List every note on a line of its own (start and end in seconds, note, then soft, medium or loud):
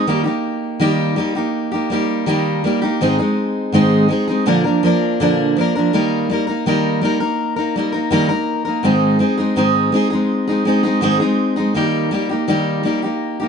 0.07 0.26 D#3 medium
0.07 0.26 G3 medium
0.07 0.26 A#3 medium
0.07 0.24 D#4 medium
0.07 0.23 G4 medium
0.24 0.80 A#3 soft
0.24 0.80 D#4 medium
0.24 0.80 G4 medium
0.80 1.17 D#3 medium
0.80 1.15 G3 medium
0.80 1.16 A#3 medium
0.80 1.17 D#4 medium
0.80 1.18 G4 medium
1.16 1.35 G3 medium
1.16 1.36 A#3 medium
1.16 1.35 D#4 medium
1.16 1.34 G4 medium
1.35 1.74 A#3 soft
1.35 1.73 D#4 medium
1.35 1.70 G4 medium
1.72 1.90 A#3 soft
1.72 1.91 D#4 medium
1.72 1.90 G4 medium
1.90 2.26 G3 medium
1.90 2.27 A#3 medium
1.90 2.27 D#4 medium
1.90 2.28 G4 medium
2.26 2.63 D#3 medium
2.26 2.63 G3 loud
2.26 2.64 A#3 medium
2.26 2.64 D#4 medium
2.26 2.65 G4 medium
2.64 2.82 G3 medium
2.64 2.83 A#3 medium
2.64 2.82 D#4 medium
2.64 2.80 G4 medium
2.82 3.02 A#3 medium
2.82 3.01 D#4 medium
2.82 3.00 G4 medium
3.01 3.19 G#2 medium
3.01 3.19 D#3 medium
3.01 3.19 G#3 medium
3.01 3.19 C4 medium
3.01 3.18 D#4 medium
3.01 3.17 G#4 medium
3.18 3.73 G#3 soft
3.18 3.73 C4 soft
3.18 3.74 D#4 medium
3.18 3.73 G#4 medium
3.72 4.09 G#2 medium
3.72 4.10 D#3 medium
3.72 4.07 G#3 medium
3.72 4.09 C4 medium
3.72 4.10 D#4 medium
3.72 4.11 G#4 loud
4.09 4.27 G#3 medium
4.09 4.28 C4 medium
4.09 4.28 D#4 medium
4.09 4.26 G#4 medium
4.27 4.46 G#3 medium
4.27 4.47 C4 soft
4.27 4.47 D#4 medium
4.27 4.46 G#4 medium
4.46 4.64 A#2 medium
4.46 4.64 D3 medium
4.46 4.65 F3 medium
4.46 4.65 A#3 medium
4.46 4.65 D4 medium
4.46 4.63 A#4 medium
4.64 4.82 F3 soft
4.64 4.83 A#3 medium
4.64 4.83 D4 medium
4.64 4.82 A#4 medium
4.83 5.19 F3 medium
4.83 5.20 A#3 medium
4.83 5.20 D4 medium
4.83 5.21 A#4 medium
5.20 5.56 A#2 medium
5.20 5.56 D3 medium
5.20 5.55 F3 medium
5.20 5.57 A#3 medium
5.20 5.57 D4 medium
5.20 5.57 A#4 medium
5.57 5.74 F3 medium
5.57 5.75 A#3 medium
5.57 5.76 D4 medium
5.61 5.74 A#4 medium
5.75 5.93 F3 medium
5.75 5.93 A#3 medium
5.75 5.93 D4 medium
5.75 5.93 A#4 medium
5.93 6.29 D#3 medium
5.93 6.28 G3 medium
5.93 6.30 A#3 medium
5.93 6.30 D#4 medium
5.93 6.30 A#4 medium
6.30 6.47 G3 medium
6.30 6.48 A#3 medium
6.30 6.48 D#4 medium
6.30 6.46 A#4 medium
6.47 6.66 A#3 soft
6.47 6.66 D#4 medium
6.47 6.65 A#4 medium
6.66 7.02 D#3 medium
6.66 7.00 G3 medium
6.66 7.02 A#3 medium
6.66 7.03 D#4 medium
6.66 7.03 A#4 medium
7.02 7.20 G3 medium
7.02 7.20 A#3 medium
7.02 7.21 D#4 medium
7.02 7.19 A#4 medium
7.20 7.58 A#3 soft
7.20 7.57 D#4 soft
7.20 7.55 A#4 medium
7.56 7.76 A#3 medium
7.56 7.76 D#4 soft
7.56 7.74 A#4 medium
7.76 7.93 G3 medium
7.76 7.94 A#3 medium
7.76 7.93 D#4 medium
7.76 7.91 A#4 medium
7.92 8.10 A#3 soft
7.92 8.12 D#4 medium
7.92 8.11 A#4 medium
8.11 8.29 D#3 medium
8.11 8.30 G3 medium
8.11 8.29 A#3 loud
8.11 8.30 D#4 loud
8.11 8.28 A#4 medium
8.29 8.67 A#3 soft
8.29 8.66 D#4 medium
8.29 8.64 A#4 medium
8.65 8.85 A#3 soft
8.65 8.84 D#4 soft
8.65 8.83 A#4 medium
8.83 9.20 G#2 medium
8.83 9.20 D#3 medium
8.83 9.18 G#3 medium
8.83 9.19 C4 medium
8.83 9.20 D#4 medium
8.83 9.21 G#4 medium
9.19 9.38 G#3 medium
9.19 9.38 C4 medium
9.19 9.38 D#4 medium
9.19 9.36 G#4 medium
9.38 9.56 G#3 soft
9.38 9.56 C4 medium
9.38 9.57 D#4 medium
9.38 9.56 G#4 medium
9.56 9.93 G#2 medium
9.56 9.93 D#3 medium
9.56 9.91 G#3 medium
9.56 9.92 C4 medium
9.56 9.93 D#4 medium
9.56 9.94 G#4 medium
9.92 10.11 G#3 medium
9.92 10.12 C4 medium
9.92 10.11 D#4 medium
9.92 10.09 G#4 medium
10.10 10.49 C4 medium
10.10 10.48 D#4 medium
10.10 10.46 G#4 medium
10.14 10.50 G#3 medium
10.48 10.64 G#3 medium
10.48 10.66 C4 soft
10.48 10.67 D#4 medium
10.48 10.66 G#4 medium
10.65 10.84 G#3 medium
10.65 10.85 C4 medium
10.65 10.83 D#4 medium
10.65 10.82 G#4 medium
10.83 11.02 C4 medium
10.83 11.02 D#4 medium
10.83 11.02 G#4 medium
10.87 11.02 G#3 soft
11.01 11.20 G#2 medium
11.01 11.21 D#3 medium
11.01 11.21 G#3 medium
11.01 11.21 C4 medium
11.01 11.20 D#4 medium
11.01 11.19 G#4 loud
11.20 11.58 G#3 soft
11.20 11.57 C4 medium
11.20 11.56 D#4 medium
11.20 11.55 G#4 medium
11.56 11.75 G#3 soft
11.56 11.75 C4 soft
11.56 11.75 D#4 medium
11.56 11.75 G#4 medium
11.74 12.12 D#3 medium
11.74 12.10 G3 medium
11.74 12.11 A#3 medium
11.74 12.13 D#4 medium
11.74 12.13 G4 medium
12.11 12.30 G3 medium
12.11 12.31 A#3 medium
12.11 12.30 D#4 medium
12.11 12.28 G4 medium
12.29 12.47 A#3 soft
12.29 12.48 D#4 medium
12.29 12.48 G4 medium
12.48 12.85 D#3 medium
12.48 12.82 G3 medium
12.48 12.84 A#3 medium
12.48 12.85 D#4 medium
12.48 12.86 G4 medium
12.83 13.03 G3 medium
12.83 13.04 A#3 medium
12.83 13.03 D#4 medium
12.83 13.01 G4 medium
13.02 13.41 A#3 medium
13.02 13.40 D#4 medium
13.02 13.38 G4 medium
13.40 13.48 A#3 medium
13.40 13.48 D#4 medium
13.40 13.48 G4 medium